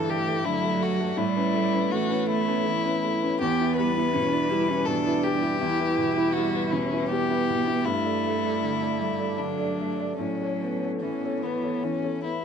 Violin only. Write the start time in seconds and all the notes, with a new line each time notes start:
Already playing: A4
0.10 G4
0.45 E4
0.82 F#4
1.18 E4
1.91 F#4
2.27 E4
3.40 G4
3.76 B4
4.85 A4
5.24 G4
6.33 F#4
6.70 E4
7.09 G4
7.84 E4
9.38 D4
10.18 C#4
11.01 C#4
11.43 B3
11.83 C#4
12.24 E4